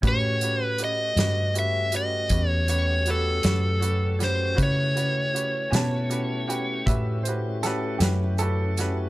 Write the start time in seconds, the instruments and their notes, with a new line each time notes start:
0.02 fingered electric bass A2, tonewheel organ A3 C#4 F#4 G4, upright piano C#4 F#4 G4 B4, kick, closed hi-hat
0.08 electric slide guitar C#5
0.41 upright piano C#4 F#4 G4 B4, closed hi-hat
0.64 electric slide guitar B4
0.78 upright piano C#4 F#4 G4 B4, closed hi-hat
0.84 electric slide guitar D#5
1.16 fingered electric bass G2, upright piano C#4 F#4 G4 B4, snare, closed hi-hat
1.54 upright piano C#4 F#4 G4 B4, closed hi-hat
1.59 electric slide guitar E5
1.92 upright piano C#4 F#4 G4 B4, closed hi-hat
1.97 electric slide guitar D#5
2.29 fingered electric bass E2, upright piano C#4 F#4 G4 B4, kick, closed hi-hat
2.49 electric slide guitar C#5
2.68 upright piano C#4 F#4 G4 B4, electric slide guitar C#5, closed hi-hat
3.06 upright piano C#4 F#4 G4 B4, closed hi-hat
3.11 electric slide guitar A4
3.43 fingered electric bass F#2, upright piano C#4 F#4 G4 B4, snare, closed hi-hat
3.80 upright piano C#4 F#4 G4 B4, closed hi-hat
4.19 upright piano C#4 F#4 G4 B4, snare, closed hi-hat
4.24 electric slide guitar C5
4.55 fingered electric bass C#3, tonewheel organ A3 C#4 E4 G4, upright piano C#4 F#4 G4 B4, kick, closed hi-hat
4.63 electric slide guitar C#5
4.94 upright piano C#4 F#4 G4 B4, closed hi-hat
5.34 upright piano C#4 F#4 G4 B4, closed hi-hat
5.71 fingered electric bass B2, upright piano C#4 F#4 G4 B4 G#5, closed hi-hat
5.75 upright piano A5, snare
6.09 upright piano C#4 F#4 G4 B4, closed hi-hat
6.48 upright piano C#4 F#4 G4 B4 G5, closed hi-hat
6.86 fingered electric bass A2, upright piano C#4 F#4 G4 B4 E5, kick, closed hi-hat
7.23 upright piano C5, closed hi-hat
7.27 upright piano C#4 F#4 G4 B4
7.63 upright piano C#4 F#4 G4 A4 B4, snare, closed hi-hat
7.98 fingered electric bass F#2, upright piano C#4 F#4 G4, snare, closed hi-hat
8.03 upright piano G4 B4
8.38 upright piano C#4 F#4 G4 A4 B4, closed hi-hat
8.77 upright piano C#4 F#4 G4 B4, snare, closed hi-hat